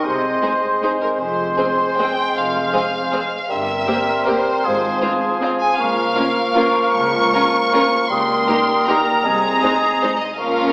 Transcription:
Already playing: violin section D#5
0.03 double bass section C2, cello section C3, bassoon G#3, clarinet C4, cor anglais C5, flute C6
0.42 viola section G#3 D#4, violin section G#4 C5
0.82 viola section G#3 D#4, violin section G#4 C5
1.02 violin section A#4
1.19 double bass section F1, cello section F2, bassoon G#3, clarinet C4, violin section C5, cor anglais C5, flute C6
1.58 viola section G#3 C4, violin section G#4 C5
1.98 viola section G#3 C4, violin section G#4 C5 G5
2.35 double bass section F1, cello section F2, violin section F5
2.73 viola section G#3 C4, violin section G#4 C5
3.12 viola section G#3 C4, violin section G#4 C5
3.49 double bass section G1, cello section G2, bassoon G3, clarinet C4, cor anglais A#4, violin section E5, flute C6
3.87 viola section A#3 C4, violin section G4 C5
4.26 viola section A#3 C4, violin section G4 C5
4.64 double bass section G#1, cello section G#2, bassoon F3, cor anglais G#4
5.02 viola section G#3 C4, violin section F4 C5
5.41 viola section G#3 C4, violin section F4 C5
5.61 violin section G#5
5.77 cello section C#2, double bass section C#2, bassoon F3, clarinet A#3, cor anglais A#4, violin section F5, flute C#6
6.15 viola section A#3 C#4, violin section F4 A#4
6.55 viola section A#3 C#4, violin section F4 A#4
6.95 cello section C#2, double bass section C#2, violin section C#6
7.33 viola section A#3 C#4, violin section F4 A#4
7.73 viola section A#3 C#4, violin section F4 A#4
8.10 double bass section C#2, cello section C#2, bassoon G3, clarinet A#3, cor anglais A#4, violin section C6, flute D#6
8.47 viola section A#3 D#4, violin section G4 A#4
8.87 viola section A#3 D#4, violin section G4 A#4 A#5
9.24 double bass section C2, cello section C2, bassoon G#3, clarinet C4, cor anglais G#4
9.62 viola section G#3 D#4, violin section G#4 C5
10.02 viola section G#3 D#4, violin section G#4 C5
10.22 violin section D#5
10.39 double bass section C#2, cello section C#2, bassoon F3, viola section A#3 C#4, clarinet C#4, violin section F4 A#4 F5, cor anglais A#4, flute C#6

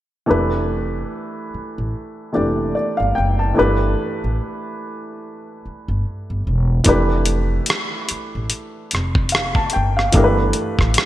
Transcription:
0.26 upright piano E3 A3 D4 G4
0.30 upright bass F1, upright piano B4
1.54 muted upright bass stroke
1.78 upright bass A1
2.33 upright bass F1, upright piano E3 A3 D4 G4 D5
2.75 upright piano D5
2.97 upright bass G1, upright piano F5
3.15 upright bass F#1, upright piano G5
3.39 upright piano A5
3.54 upright piano E3 A3 D4 G4
3.59 upright bass G1, upright piano B4
4.24 upright bass A1
5.66 muted upright bass stroke
5.88 upright bass G1
6.30 upright bass G1
6.47 upright bass E1
6.84 upright bass F1, upright piano E3 A3 D4 G4, kick, closed hi-hat
6.89 upright piano B4
7.25 closed hi-hat
7.66 cross-stick, closed hi-hat
8.09 muted upright bass stroke, closed hi-hat
8.35 upright bass A1
8.50 closed hi-hat
8.91 upright bass F1, cross-stick, closed hi-hat
9.15 kick
9.29 upright piano F5, closed hi-hat
9.35 cross-stick
9.55 upright piano A5, kick
9.70 upright piano G5, closed hi-hat
9.76 upright bass G1
9.97 upright piano F5, cross-stick
10.12 upright bass G1, upright piano E3 A3 D4 G4, kick, closed hi-hat
10.17 upright piano A#4
10.24 upright piano B4
10.53 closed hi-hat
10.79 upright bass A1, kick, cross-stick
10.94 cross-stick, closed hi-hat

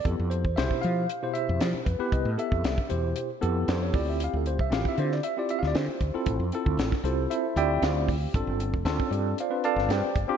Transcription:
0.05 fretless electric bass F2, tine electric piano B3 E4 G4 A4, kick, closed hi-hat
0.19 fretless electric bass F2
0.30 tine electric piano C5, closed hi-hat
0.45 fretless electric bass E2, kick
0.56 fretless electric bass C2, tine electric piano B2 E4 G4 C5 E5, snare, closed hi-hat
0.71 kick
0.82 fretless electric bass F3, tine electric piano F5, closed hi-hat
1.09 closed hi-hat
1.23 tine electric piano B2 E4 G4 C5
1.34 tine electric piano E5, closed hi-hat
1.49 fretless electric bass F2
1.60 fretless electric bass F3, snare, closed hi-hat
1.74 muted fretless electric bass stroke
1.85 fretless electric bass F2, tine electric piano B4, kick, closed hi-hat
1.99 tine electric piano B3 E4 G4 B4, muted fretless electric bass stroke
2.12 fretless electric bass C2, tine electric piano D#5, kick, closed hi-hat
2.25 fretless electric bass A2
2.37 tine electric piano B3 E4 G4 A4 E5, closed hi-hat
2.52 fretless electric bass F2, kick
2.64 fretless electric bass C2, snare, closed hi-hat
2.78 muted fretless electric bass stroke, kick
2.89 fretless electric bass E2, tine electric piano B2 E4 G4 C5, closed hi-hat
3.16 closed hi-hat
3.41 fretless electric bass F2, tine electric piano B3 E4 G4 A4, closed hi-hat
3.68 fretless electric bass F2, tine electric piano C5, snare, closed hi-hat
3.83 tine electric piano C#5
3.93 fretless electric bass D2, tine electric piano C4 E4 F4 G4 D5, kick, open hi-hat
4.09 tine electric piano E5
4.20 tine electric piano F5, closed hi-hat
4.33 fretless electric bass D2, tine electric piano A4
4.46 tine electric piano C5, closed hi-hat
4.59 fretless electric bass C2, tine electric piano E5, kick
4.71 fretless electric bass A1, tine electric piano C4 E4 F4 G4 F5, snare, closed hi-hat
4.85 tine electric piano E5, muted fretless electric bass stroke, kick
4.98 fretless electric bass D3, tine electric piano C5, closed hi-hat
5.12 tine electric piano D5, snare
5.23 tine electric piano E5, closed hi-hat
5.37 tine electric piano C4 E4 F4 G4 D5
5.49 tine electric piano E5, closed hi-hat
5.59 fretless electric bass D2, tine electric piano F5
5.63 tine electric piano D5, snare
5.75 fretless electric bass D3, tine electric piano C5, snare, closed hi-hat
5.88 muted fretless electric bass stroke
6.01 fretless electric bass D2, kick, closed hi-hat
6.14 tine electric piano C4 E4 F4 A4
6.26 fretless electric bass A1, kick, closed hi-hat
6.40 fretless electric bass F2
6.52 tine electric piano C4 E4 F4 A4, closed hi-hat
6.66 fretless electric bass D2, kick
6.77 fretless electric bass A1, snare, closed hi-hat
6.92 kick, snare
7.03 fretless electric bass C2, tine electric piano C4 E4 F4 G4 A4 C5, closed hi-hat
7.30 tine electric piano E4 A4 C5 E5, closed hi-hat
7.56 fretless electric bass D2, tine electric piano C4 E4 F4 G4 D5 E5 G5, closed hi-hat
7.82 fretless electric bass D2, tine electric piano F4 C5 D5 F5, snare, closed hi-hat
8.08 kick, open hi-hat
8.34 fretless electric bass G1, tine electric piano C4 D4 F4 A4, kick, closed hi-hat
8.47 fretless electric bass G1
8.60 closed hi-hat
8.74 fretless electric bass F1, kick
8.85 fretless electric bass D2, tine electric piano C4 D4 F4 A4, snare, closed hi-hat
9.00 kick
9.06 tine electric piano C#5
9.11 fretless electric bass G2, tine electric piano D4 G4 A4 D5, closed hi-hat
9.38 tine electric piano F4 C5 D5 F5, closed hi-hat
9.50 tine electric piano C4 D4 F4 B4
9.64 tine electric piano A4 D5 F5 A5, closed hi-hat
9.76 fretless electric bass G1, snare
9.89 fretless electric bass G2, tine electric piano G4 C5 D5 G5, snare, closed hi-hat
10.03 muted fretless electric bass stroke
10.16 fretless electric bass G1, kick, closed hi-hat
10.28 tine electric piano C4 D4 F4 G4, muted fretless electric bass stroke

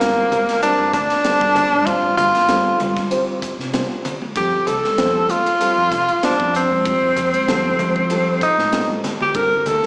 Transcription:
Already playing: tenor saxophone A#3
0.00 fingered electric bass G2, grand piano G3 C4 F4 C5, snare, hi-hat pedal, ride
0.32 hi-hat pedal, ride, high conga, low conga
0.49 snare, ride
0.62 grand piano G3 C4 F4 A#4, tenor saxophone D4, hi-hat pedal, ride
0.79 fingered electric bass G2
0.93 fingered electric bass D2, tenor saxophone D4, kick, snare, hi-hat pedal, ride
1.10 snare, ride
1.24 grand piano G3 C4 F4 A4, muted fingered electric bass stroke, snare, hi-hat pedal, ride
1.41 fingered electric bass G2, kick
1.55 hi-hat pedal, ride, low conga
1.72 fingered electric bass G2, high conga
1.86 grand piano G3 C4 F4 C5, tenor saxophone F4, kick, hi-hat pedal, ride
2.03 fingered electric bass G2
2.17 fingered electric bass G2, tenor saxophone F4, hi-hat pedal, ride, low conga
2.35 snare, ride, high conga
2.48 fingered electric bass G2, grand piano G3 C4 F4 A4, snare, hi-hat pedal, ride
2.80 fingered electric bass G3, hi-hat pedal, ride, high conga, low conga
2.97 kick, snare
3.10 grand piano G3 C4 F4 C5, hi-hat pedal, ride
3.42 kick, hi-hat pedal, ride
3.59 fingered electric bass C3, snare
3.72 grand piano G3 C4 F4 C5, snare, hi-hat pedal, ride
4.05 hi-hat pedal, ride, low conga
4.22 high conga
4.36 fingered electric bass F2, grand piano G3 C4 F4 A4, tenor saxophone G4, kick, hi-hat pedal, ride
4.67 fingered electric bass C2, tenor saxophone A4, hi-hat pedal, ride, low conga
4.84 snare, high conga
4.97 fingered electric bass F2, grand piano G3 C4 F4 C5, snare, hi-hat pedal, ride
5.29 tenor saxophone F4, hi-hat pedal, ride, high conga
5.46 ride
5.59 grand piano G3 C4 F4 A4, hi-hat pedal, ride
5.77 fingered electric bass F2
5.92 fingered electric bass C2, kick, snare, hi-hat pedal, ride
6.08 ride
6.22 grand piano G3 C4 F4 C5, tenor saxophone D4, muted fingered electric bass stroke, snare, hi-hat pedal, ride
6.39 fingered electric bass F2, kick
6.54 tenor saxophone C4, hi-hat pedal, ride
6.70 fingered electric bass F2, high conga
6.85 grand piano G3 C4 F4 C5, kick, hi-hat pedal, ride
7.01 fingered electric bass F2
7.16 fingered electric bass F2, hi-hat pedal, ride, low conga
7.33 ride, high conga
7.47 fingered electric bass F2, grand piano G3 C4 F4 A4, snare, hi-hat pedal, ride, low conga
7.79 fingered electric bass F3, hi-hat pedal, ride, high conga, low conga
7.96 kick
8.10 grand piano G3 C4 F4 A4, hi-hat pedal, ride
8.41 tenor saxophone D#4, kick, hi-hat pedal, ride
8.58 fingered electric bass A2, snare, high conga
8.72 grand piano G3 C4 F4 A4, snare, hi-hat pedal, ride, high conga
8.90 high conga
9.04 snare, hi-hat pedal, ride, low conga
9.21 tenor saxophone G4, low conga
9.34 fingered electric bass G2, grand piano G3 C4 F4 A4, tenor saxophone A#4, kick, hi-hat pedal, ride
9.57 tenor saxophone A#4
9.66 fingered electric bass D2, tenor saxophone A4, hi-hat pedal, ride, low conga
9.83 snare

